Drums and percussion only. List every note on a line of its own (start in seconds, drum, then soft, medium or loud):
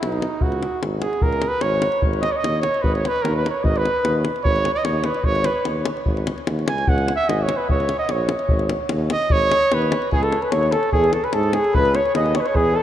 0.03 davul high medium
0.12 davul high soft
0.22 davul high medium
0.41 davul low medium
0.52 davul high soft
0.63 davul high medium
0.83 davul high medium
1.02 davul high medium
1.13 davul high soft
1.22 davul low medium
1.33 davul high soft
1.42 davul high medium
1.61 davul high medium
1.82 davul high medium
1.92 davul high soft
2.02 davul low medium
2.13 davul high soft
2.23 davul high medium
2.44 davul high medium
2.63 davul high medium
2.74 davul high soft
2.84 davul low medium
2.95 davul high soft
3.05 davul high medium
3.16 davul high soft
3.25 davul high medium
3.46 davul high medium
3.65 davul low medium
3.76 davul high soft
3.85 davul high medium
4.05 davul high medium
4.25 davul high medium
4.36 davul high soft
4.45 davul low medium
4.56 davul high soft
4.65 davul high medium
4.85 davul high medium
5.04 davul high medium
5.14 davul high soft
5.24 davul low medium
5.35 davul high soft
5.44 davul high medium
5.65 davul high medium
5.85 davul high medium
5.97 davul high soft
6.06 davul low medium
6.17 davul high soft
6.27 davul high medium
6.38 davul high soft
6.47 davul high medium
6.59 davul high soft
6.68 davul high medium
6.78 davul high soft
6.87 davul low medium
6.98 davul high soft
7.08 davul high medium
7.29 davul high medium
7.49 davul high medium
7.69 davul low medium
7.80 davul high soft
7.89 davul high medium
8.09 davul high medium
8.29 davul high medium
8.39 davul high soft
8.49 davul low medium
8.59 davul high soft
8.69 davul high medium
8.89 davul high medium
9.10 davul high medium
9.22 davul high soft
9.30 davul low medium
9.42 davul high soft
9.52 davul high medium
9.62 davul high soft
9.72 davul high medium
9.82 davul high soft
9.92 davul high medium
10.02 davul high soft
10.12 davul low medium
10.23 davul high soft
10.32 davul high medium
10.42 davul high soft
10.52 davul high medium
10.63 davul high soft
10.72 davul high medium
10.83 davul high soft
10.93 davul low medium
11.04 davul high soft
11.13 davul high medium
11.24 davul high soft
11.33 davul high medium
11.43 davul high soft
11.53 davul high medium
11.64 davul high soft
11.75 davul low medium
11.85 davul high soft
11.95 davul high medium
12.05 davul high soft
12.15 davul high medium
12.26 davul high soft
12.35 davul high medium
12.46 davul high soft
12.55 davul low medium